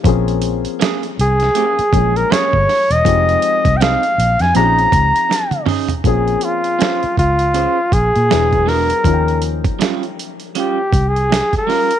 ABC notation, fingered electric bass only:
X:1
M:4/4
L:1/16
Q:"Swing 16ths" 1/4=80
K:Bbdor
V:1 name="Fingered electric bass" clef=bass
B,,,4 z2 C,,2 z2 B,,,2 z G,,, z =E,,, | F,,,2 z C,,2 z B,,, F,, B,,,2 D,, z4 z | B,,,2 z4 D,,3 z B,,, B,, =E,,,4 | E,,4 z6 C,,3 z3 |]